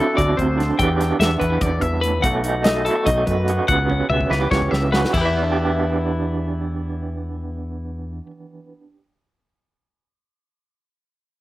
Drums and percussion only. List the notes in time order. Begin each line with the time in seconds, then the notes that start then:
0.18 kick, closed hi-hat
0.39 kick, closed hi-hat
0.60 snare, closed hi-hat
0.79 kick, closed hi-hat
1.01 snare, closed hi-hat
1.21 snare, closed hi-hat
1.41 kick, closed hi-hat
1.61 kick, closed hi-hat
1.82 kick, closed hi-hat
2.03 closed hi-hat
2.24 kick, closed hi-hat
2.44 closed hi-hat
2.64 snare, closed hi-hat
2.86 closed hi-hat
3.07 kick, closed hi-hat
3.27 kick, closed hi-hat
3.48 closed hi-hat
3.68 kick, closed hi-hat
3.90 kick
4.10 high tom
4.21 kick
4.32 snare
4.51 kick, snare
4.62 kick
4.73 snare
4.94 snare
5.05 snare
5.14 kick, crash